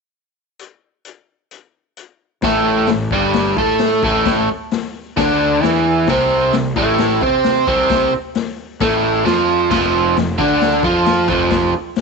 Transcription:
0.59 closed hi-hat
1.05 closed hi-hat
1.51 closed hi-hat
1.97 closed hi-hat
2.42 A1 A2 A3, kick, snare, open hi-hat
2.87 A1 A2, snare, open hi-hat
3.11 G1 G2 G3, kick
3.33 snare, open hi-hat
3.57 A2 A3 A4, kick
3.79 snare, open hi-hat
4.03 A1 A2 A3, kick
4.25 kick, snare, open hi-hat
4.71 snare, open hi-hat
5.17 D2 D3 D4, kick, snare, open hi-hat
5.62 E2 E3 E4, snare, open hi-hat
6.07 C2 C3 C4, kick, snare, open hi-hat
6.52 C2 C3, snare, open hi-hat
6.76 A1 A2 A3, kick
6.98 snare, open hi-hat
7.21 C3 C4 C5, kick
7.44 snare, open hi-hat
7.67 C2 C3 C4, kick
7.90 kick, snare, open hi-hat
8.35 snare, open hi-hat
8.80 A1 A2 A3, kick, snare, open hi-hat
9.25 F2 F3 F4, snare, open hi-hat
9.71 F1 F2 F3, kick, snare, crash
10.17 F1 F2, snare, open hi-hat
10.38 D2 D3 D4, kick
10.61 snare, open hi-hat
10.83 F2 F3 F4, kick
11.06 snare, open hi-hat
11.28 F1 F2 F3, kick
11.50 kick, snare, open hi-hat
11.96 snare, open hi-hat

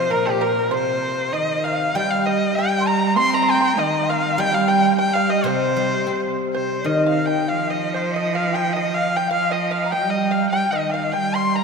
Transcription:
Already playing: C3 F3 C5
0.05 C5
0.10 A#2 A#4
0.26 G4
0.41 A#4
0.70 C3 C5
1.18 C5
1.32 D#3 D#5
1.63 F5
1.94 G3 G5
2.03 F5
2.10 F5 G5
2.26 D#5
2.55 G3 G5
2.80 C6
2.87 A#5
3.16 C4 C6
3.25 C6
3.31 A#5 C6
3.42 C6
3.49 G5 C6
3.54 C6
3.61 C6
3.77 D#3 D#5
4.04 G5
4.09 F5
4.38 G3 G5
4.52 F5
4.68 G5
4.98 G3 G5
5.14 F5
5.29 D#5
5.44 C3 C5
5.48 C5
5.76 G3
6.07 C4
6.54 C3 C5
6.84 D#3 D#5
7.06 F5
7.26 G5
7.47 F3 F5
7.68 D#5
7.94 C5
8.12 D#5
8.33 F5
8.53 G5
8.73 D#5
8.94 F5
9.14 G5
9.28 F3 F5
9.50 D#5
9.71 F5
9.84 A#5
9.90 G3 G5
10.10 D#5
10.31 F5
10.50 G3 G5
10.71 D#3 D#5
10.90 F5 G5
10.94 F5
11.12 G3 G5
11.34 C6
11.54 A#5

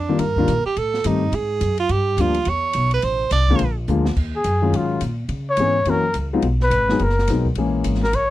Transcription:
Already playing: F2 D4
0.09 D#3 G3 A#3 D4 F4
0.19 G2 A#4, ride
0.36 D#3 G3 A#3 D4 F4, kick
0.48 A#2, hi-hat pedal, ride
0.65 G4, muted upright bass stroke
0.76 A2 A4, ride
0.94 snare
1.04 G2 D#3 G3 A3 C4 D#4 G4, hi-hat pedal, ride
1.32 G#2 G#4, ride
1.61 F#2, hi-hat pedal, ride
1.77 F4, ride
1.89 G2 G4, ride
2.17 D2 F3 G3 A#3 D4 G4, hi-hat pedal, ride
2.21 F4
2.34 ride
2.45 E2 C#5, ride
2.73 B1, hi-hat pedal, ride
2.91 B4, ride
3.02 A1 C5, ride
3.31 C2 D5, hi-hat pedal, ride
3.48 D3 F3 G#3 A#3 F4, kick
3.59 A#1, ride
3.87 D2 D3 F3 G#3 A#3 F4, hi-hat pedal
4.05 snare
4.16 D#2, kick, crash
4.36 G#4
4.44 F#2, hi-hat pedal, ride
4.62 D#3 F#3 G#3 C#4 F4
4.72 G#2 F4, ride
5.01 A#2, hi-hat pedal, ride
5.29 C#3, ride
5.50 C#5
5.57 G#2 E3 G#3 B3 C#4 G#4, hi-hat pedal, ride
5.85 F#2 E3 F#3 A#3 C#4 F#4, ride
5.89 A#4
6.14 C#2, hi-hat pedal, ride
6.33 F#3 G#3 B3 D#4 F4
6.42 B1, ride
6.60 B4, snare
6.70 G#1, hi-hat pedal, ride
6.89 F#3 G#3 B3 D#4 G#4, snare
6.99 F#1 A#4, ride
7.09 snare
7.19 snare
7.28 B1 F#3 G#3 B3 D#4 A#4, snare, hi-hat pedal, ride
7.45 kick
7.55 A#1 E3 G#3 A#3 C#4 G#4, ride
7.84 G#1, hi-hat pedal, ride
7.95 snare
8.04 A#4, snare
8.13 A1 C#5, ride

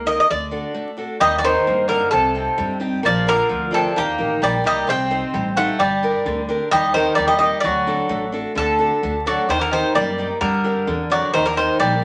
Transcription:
Already playing: C#2 A#3
0.06 D#4 G4 A#4 D#5
0.20 D#5
0.30 D2 D3 D5
0.51 D4 F#4 A4
0.74 A3
0.97 D4 F#4 A4
1.20 D#2 D#3 G3 D#5
1.38 F#3 D5
1.43 D#3 D#4 G4 A#4 C5
1.67 G2 A#3
1.88 D3 D#4 G4 A#4
2.11 C2 C3 A4
2.35 C4 D#4 G4
2.58 G2 G3
2.80 C4 D#4 G4
3.03 A#1 F3 A#3 D5
3.27 D3 F4 A#4 D5
3.49 D2 F3
3.71 C3 F4 A4 A#4 D5
3.96 D#2 D#3 A#3 G4
4.18 A1 D#4 G4 A#4
4.42 A#1 G3 A#3 D5
4.64 C2 G3 D#4 G4 A#4 D#5
4.87 C2 C3 C4 G5
5.10 D#4 G4 C5
5.34 A1 G3
5.56 A3 D#4 G4 C5 F#5
5.79 G1 G3 D5
6.03 D4 G4 A#4
6.25 D2 D3
6.49 D4 G4 A#4
6.71 D#2 D#3 G3 D#5
6.94 D#3 D#4 G4 A#4 C5
7.15 D#2 G3 A#3 D5
7.27 G3 D#5
7.39 G3 D#4 G4 A#4 D#5
7.60 D2 D3 D5
7.64 F#3
7.87 D4 F#4 A4
8.09 A1 A3
8.32 D4 F#4 A4
8.55 D2 D3 A4
8.79 D4 F#4 A4
9.03 D2 A3
9.26 F#3 D4 F#4 A4 D5
9.49 D#2 D#3 C5
9.59 D3 A#4
9.71 D#3 D#4 G4 A#4 C5
9.95 F#2 G3 A#3 D5
10.18 D#4 G4 A#4
10.41 G2 D3 G3 A#4
10.64 D4 G4 A#4
10.87 E2 D3
11.10 F#3 D4 G4 A#4 D5
11.33 D#2 D#3 C5
11.46 D3 A#4
11.56 D#3 D#4 G4 A#4 C5
11.79 A#1 G3 A#3 D5

